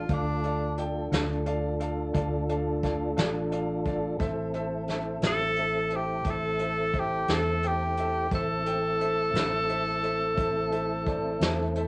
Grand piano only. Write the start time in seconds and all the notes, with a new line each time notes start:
0.11 A4 D5 F5
0.44 A4 D5 F5
0.78 A4 D5 G5
1.12 A4 D5 F5
1.46 A4 D5 F5
1.80 A4 D5 F5
2.14 A4 D5 F5
2.49 A4 D5 F5
2.83 A4 D5 F5
3.17 A4 D5 F5
3.51 A4 D5 F5
3.86 A4 D5 F5
4.20 A4 C5 E5
4.54 A4 C5 E5
4.89 A4 C5 E5
5.22 A4 C5 E5
5.58 A4 C5 E5
5.92 A4 C5 E5
6.27 A4 C5 E5
6.60 A4 C5 E5
6.94 A4 C5 E5
7.30 A4 C5 E5
7.63 A4 C5 G5
7.99 A4 C5 E5
8.33 A4 C5 E5
8.67 A4 C5 G5
9.00 A4 C5 E5
9.35 A4 C5 E5
9.69 A4 C5 E5
10.03 A4 C5 E5
10.37 A4 C5 E5
10.72 A4 C5 E5
11.07 A4 C5 D5
11.42 A4 C5 E5
11.76 A4 C5 E5